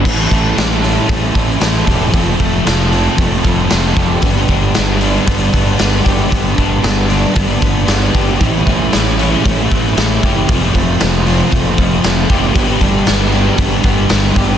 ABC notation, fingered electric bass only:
X:1
M:4/4
L:1/8
Q:1/4=115
K:Glyd
V:1 name="Fingered electric bass" clef=bass
z A,,, A,,,2 A,,, A,,, A,,, E,,, | =F,,, F,,, F,,,2 F,,, F,,, F,,, F,,, | G,,, G,,, G,,,2 G,,, G,,, G,,, G,,, | G,,, G,,, G,,,2 G,,, G,,, G,,, G,,, |
A,,, A,,, A,,,2 A,,, A,,, A,,, F,,, | =F,,, F,,, F,,,2 F,,, F,,, F,,, F,,, | G,,, G,,, G,,,2 G,,, G,,, G,,, G,,, |]